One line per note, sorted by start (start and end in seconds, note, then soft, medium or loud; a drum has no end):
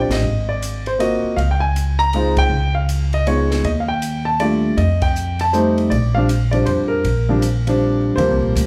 0.00 0.25 C4 medium
0.00 0.25 D4 medium
0.00 0.25 F4 medium
0.00 0.25 G4 medium
0.00 0.10 D5 medium
0.09 0.22 A1 medium
0.09 0.50 D#5 medium
0.09 snare medium
0.09 ride medium
0.23 1.19 G#1 medium
0.49 0.87 D5 medium
0.62 hi-hat pedal medium
0.62 ride medium
0.86 0.92 C5 medium
0.86 ride soft
0.99 1.37 A#3 medium
0.99 1.37 C4 medium
0.99 1.38 F4 soft
0.99 1.38 F#4 medium
0.99 1.39 D#5 medium
0.99 ride medium
1.23 muted upright bass stroke soft
1.36 2.47 C#2 medium
1.36 1.53 F5 medium
1.36 ride soft
1.51 1.61 G5 medium
1.60 1.96 G#5 medium
1.76 hi-hat pedal medium
1.76 ride medium
1.99 2.34 A#5 loud
1.99 ride soft
2.13 2.51 G#3 medium
2.13 2.52 C4 medium
2.13 2.52 D#4 medium
2.13 2.52 F4 medium
2.13 ride soft
2.37 2.73 G5 loud
2.37 kick medium
2.37 ride medium
2.50 3.60 C#2 medium
2.75 3.14 F5 medium
2.89 hi-hat pedal medium
2.89 ride medium
3.13 3.26 D#5 medium
3.13 ride soft
3.27 3.64 G#3 medium
3.27 3.65 B3 soft
3.27 3.65 D#4 soft
3.27 3.65 F4 medium
3.27 3.62 C#5 medium
3.27 ride soft
3.51 snare soft
3.63 4.73 D#2 medium
3.63 3.70 D#5 medium
3.63 ride medium
3.80 3.89 F5 medium
3.88 4.27 G5 medium
4.02 hi-hat pedal medium
4.02 ride medium
4.25 4.40 A5 medium
4.40 4.78 G3 soft
4.40 4.78 A3 soft
4.40 4.78 D4 soft
4.40 4.79 F4 medium
4.40 4.79 D5 medium
4.40 ride medium
4.77 5.87 F2 medium
4.77 5.00 D#5 medium
4.77 ride medium
5.02 5.41 G5 medium
5.02 kick medium
5.02 ride medium
5.16 hi-hat pedal medium
5.39 5.54 A5 medium
5.39 ride medium
5.53 5.91 G3 medium
5.53 5.91 A3 medium
5.53 5.91 C4 medium
5.53 5.92 D#4 medium
5.53 5.88 C5 medium
5.53 hi-hat pedal soft
5.78 ride soft
5.90 6.62 A#1 medium
5.90 6.15 D5 medium
5.90 ride medium
6.15 6.28 F3 medium
6.15 6.28 G3 medium
6.15 6.28 C4 medium
6.15 6.29 D4 medium
6.15 6.50 F5 medium
6.29 hi-hat pedal soft
6.29 ride medium
6.51 7.01 F3 medium
6.51 7.02 G3 medium
6.51 7.02 C4 medium
6.51 7.02 D4 medium
6.51 6.66 D5 medium
6.51 ride soft
6.66 7.02 F2 medium
6.66 6.71 C5 medium
6.66 ride medium
6.88 7.99 A#4 medium
7.04 8.13 A#1 medium
7.04 ride medium
7.29 7.41 F3 medium
7.29 7.41 G3 medium
7.29 7.41 C4 medium
7.29 7.42 D4 medium
7.42 hi-hat pedal medium
7.42 ride medium
7.67 8.15 F3 medium
7.67 8.16 G3 medium
7.67 8.16 C4 medium
7.67 8.16 D4 medium
7.67 ride medium
8.16 8.30 D#2 medium
8.16 8.67 F3 medium
8.16 8.67 G3 medium
8.16 8.67 A#3 medium
8.16 8.67 C4 medium
8.16 8.52 C5 medium
8.16 ride medium
8.30 8.42 C2 medium
8.43 8.54 A#1 medium
8.55 8.67 D2 medium
8.55 hi-hat pedal medium
8.55 ride medium